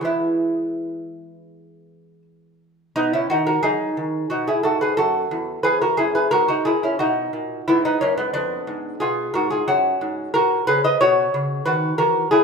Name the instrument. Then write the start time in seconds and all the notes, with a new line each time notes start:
lute
0.01 E3 G#3 B3 E4
2.96 B2 B3 D#4
3.13 C#4 E4
3.30 D#3 D#4 F#4
3.47 F#4 A#4
3.63 F#3 D#4 G#4
3.97 D#3
4.30 B2 D#4 F#4
4.47 E4 G#4
4.63 G#2 F#4 A4
4.81 G#4 B4
4.97 F#2 F#4 A4
5.31 E2
5.63 E2 G#4 B4
5.82 F#4 A#4
5.97 F#2 E4 G#4
6.15 G#4 B4
6.31 G#2 F#4 A#4
6.48 D#4 F#4
6.65 A#2 E4 G#4
6.83 C#4 E4
6.99 B2 D#4 F#4
7.33 A#2
7.68 G#2 B3 E4
7.85 B3 D#4
8.01 F#2 A#3 C#4
8.17 G#3 B3
8.34 F2 B3 D4
8.67 G#2
9.00 B2 F4 G#4
9.34 G#2 F#4 A#4
9.50 F4 G#4
9.68 F#2 C#4 F#4
10.01 G#2
10.34 A#2 F#4 A#4
10.67 C#3 G#4 B4
10.84 B4 D#5
11.01 B2 F#4 C#5
11.34 C#3
11.65 D#3 F#4 B4
11.98 E3 F#4 A#4
12.31 F#3 E4 G#4